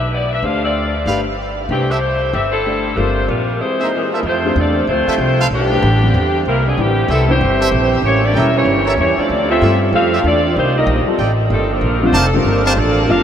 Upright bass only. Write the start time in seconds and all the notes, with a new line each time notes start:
Already playing: B1
0.42 D2
1.06 G1
1.69 C2
2.33 G1
2.97 G1
3.28 A#1
4.23 F2
4.56 E2
4.87 D2
5.07 muted upright bass stroke
5.18 C2
5.51 B1
5.82 A1
6.14 E2
6.45 C2
6.78 A1
7.08 C2
7.41 G1
7.72 A#1
8.02 A1
8.34 E1
8.65 G1
8.98 E2
9.18 muted upright bass stroke
9.29 D2
9.62 G2
9.93 F2
10.24 E2
10.56 C2
10.87 A#1
11.07 muted upright bass stroke
11.19 A1
11.50 G1
11.81 A#1
12.13 F1
12.44 G1
12.77 A1
13.08 G1